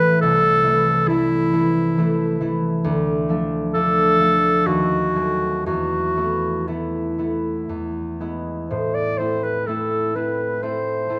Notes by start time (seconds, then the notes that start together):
Already playing: A1 E3 A3 E4 B4
0.21 C2 A4
0.64 E3 A3
0.69 E4
1.08 E3 A3 E4
1.53 E3 A3 E4
1.98 E3 A3 E4
2.41 E3 A3 E4
2.84 D2
3.29 F3 A3 D4
3.74 F3 A3 D4 A4
4.20 F3 A3 D4
4.66 D#2 F#4
5.15 F#3 A3 C4
5.66 E2 F#4
6.16 A3 B3 E4
6.67 A3 B3 E4
7.18 A3 B3 E4
7.69 E2
8.20 G#3 B3 E4
8.70 A2 C5
8.94 D5
9.18 A3 C4 E4 C5
9.44 B4
9.67 A3 C4 E4 A4
10.15 A3 C4 E4 B4
10.63 A3 C4 E4 C5
11.09 A3 C4 E4